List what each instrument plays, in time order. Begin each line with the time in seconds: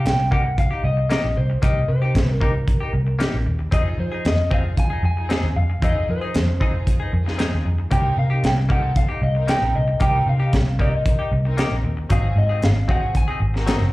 0.05 fingered electric bass C2, clean electric guitar G5, muted clean electric guitar stroke, snare, closed hi-hat
0.19 muted clean electric guitar stroke
0.31 clean electric guitar A#3 D#4 G4 F#5, kick
0.45 muted clean electric guitar stroke
0.58 clean electric guitar F5, kick, closed hi-hat
0.71 clean electric guitar D#4 G4
0.84 fingered electric bass C2, clean electric guitar D#5, muted clean electric guitar stroke
0.97 muted clean electric guitar stroke
1.10 clean electric guitar A#3 D#4 G4 D#5, snare, closed hi-hat
1.24 fingered electric bass A#1
1.36 fingered electric bass C2, clean electric guitar C5, muted clean electric guitar stroke
1.50 muted clean electric guitar stroke
1.62 fingered electric bass C2, clean electric guitar A#3 D#4 G4 D#5, kick, closed hi-hat
1.88 fingered electric bass C3, clean electric guitar C5, muted clean electric guitar stroke
2.02 clean electric guitar D#4 G4
2.15 fingered electric bass C2, muted clean electric guitar stroke, kick, snare, closed hi-hat
2.28 clean electric guitar A#4, muted clean electric guitar stroke
2.41 clean electric guitar A#3 D#4 G4 A#4, kick
2.55 muted clean electric guitar stroke
2.68 kick, closed hi-hat
2.80 clean electric guitar D#4 G4
2.93 fingered electric bass C2, muted clean electric guitar stroke
3.07 muted clean electric guitar stroke
3.19 clean electric guitar A#3 D#4 G4, snare, closed hi-hat
3.34 fingered electric bass A#1
3.45 fingered electric bass D#2, muted clean electric guitar stroke
3.59 muted clean electric guitar stroke
3.71 fingered electric bass F2, clean electric guitar C4 D#4 G#4 D#5, string section D#4 F4 G#4, kick, closed hi-hat
3.98 fingered electric bass F3, clean electric guitar C5, muted clean electric guitar stroke
4.12 clean electric guitar D#4 G#4
4.25 fingered electric bass F2, clean electric guitar D#5, muted clean electric guitar stroke, snare, closed hi-hat
4.38 muted clean electric guitar stroke
4.50 clean electric guitar C4 D#4 G#4 F5, string section D#4 F4 G#4, kick
4.65 muted clean electric guitar stroke
4.77 clean electric guitar G#5, kick, closed hi-hat
4.90 clean electric guitar D#4 G#4
5.03 fingered electric bass F2, clean electric guitar G#5, muted clean electric guitar stroke
5.16 string section D#4 F4 G#4, muted clean electric guitar stroke
5.29 clean electric guitar C4 D#4 G#4, snare, closed hi-hat
5.43 fingered electric bass D#2
5.56 fingered electric bass F2, clean electric guitar F5, muted clean electric guitar stroke
5.70 muted clean electric guitar stroke
5.81 fingered electric bass F2, clean electric guitar C4 D#4 G#4 D#5, string section D#4 F4 G#4, kick, closed hi-hat
6.08 fingered electric bass F3, clean electric guitar C5, muted clean electric guitar stroke
6.21 clean electric guitar D#4 G#4
6.34 fingered electric bass F2, muted clean electric guitar stroke, snare, closed hi-hat
6.48 muted clean electric guitar stroke
6.60 clean electric guitar C4 D#4 G#4, string section D#4 F4 G#4, kick
6.74 muted clean electric guitar stroke
6.87 kick, closed hi-hat
7.00 clean electric guitar D#4 G#4
7.11 fingered electric bass F2, clean electric guitar A#4, muted clean electric guitar stroke
7.25 string section D#4 F4 G#4, muted clean electric guitar stroke, snare
7.38 clean electric guitar C4 D#4 G#4, snare, closed hi-hat
7.53 fingered electric bass D#2
7.65 fingered electric bass F2, muted clean electric guitar stroke
7.79 muted clean electric guitar stroke
7.91 fingered electric bass C2, clean electric guitar A#3 D#4 G4 G5, string section C4 D#4 A#4, kick, closed hi-hat
8.17 fingered electric bass C3, clean electric guitar F5, muted clean electric guitar stroke
8.30 clean electric guitar D#4 G4
8.43 fingered electric bass C2, clean electric guitar G5, muted clean electric guitar stroke, snare, closed hi-hat
8.57 muted clean electric guitar stroke
8.69 clean electric guitar A#3 D#4 G4 F#5, string section C4 D#4 A4, kick
8.83 muted clean electric guitar stroke
8.96 clean electric guitar F5, kick, closed hi-hat
9.09 clean electric guitar D#4 G4
9.21 fingered electric bass C2, clean electric guitar D#5, muted clean electric guitar stroke
9.35 string section C4 D#4 A#4, muted clean electric guitar stroke
9.47 clean electric guitar A#3 D#4 G4 G5, snare, closed hi-hat
9.62 fingered electric bass A#1
9.74 fingered electric bass C2, clean electric guitar D#5, muted clean electric guitar stroke
9.88 muted clean electric guitar stroke
10.00 fingered electric bass C2, clean electric guitar A#3 D#4 G4 G5, string section C4 D#4 A#4, kick, closed hi-hat
10.26 fingered electric bass C3, clean electric guitar F5, muted clean electric guitar stroke
10.40 clean electric guitar D#4 G4
10.53 fingered electric bass C2, muted clean electric guitar stroke, kick, snare, closed hi-hat
10.67 muted clean electric guitar stroke
10.79 clean electric guitar A#3 D#4 G4 D#5, string section C4 D#4 A#4, kick
10.93 muted clean electric guitar stroke
11.06 kick, closed hi-hat
11.19 clean electric guitar D#4 G4
11.32 fingered electric bass C2, muted clean electric guitar stroke
11.44 string section C4 D#4 A#4, muted clean electric guitar stroke
11.57 clean electric guitar A#3 D#4 G4, snare, closed hi-hat
11.71 fingered electric bass A#1
11.83 fingered electric bass D#2, muted clean electric guitar stroke
11.97 muted clean electric guitar stroke
12.10 fingered electric bass G#1, clean electric guitar F#3 C4 D#4 G#4 F5, string section C4 F#4 G#4, kick, closed hi-hat
12.36 fingered electric bass G#2, clean electric guitar D#5, muted clean electric guitar stroke
12.49 clean electric guitar C4 D#4 G#4
12.62 fingered electric bass G#1, clean electric guitar F5, muted clean electric guitar stroke, snare, closed hi-hat
12.76 muted clean electric guitar stroke
12.88 clean electric guitar F#3 C4 D#4 G#4 F#5, string section C4 F#4 G#4, kick
13.02 muted clean electric guitar stroke
13.15 clean electric guitar G#5, kick, closed hi-hat
13.28 clean electric guitar C4 D#4 G#4
13.40 fingered electric bass G#1, muted clean electric guitar stroke
13.54 string section C4 F#4 A#4, muted clean electric guitar stroke, snare
13.66 clean electric guitar F#3 C4 D#4 G#4, snare, closed hi-hat
13.80 fingered electric bass F#1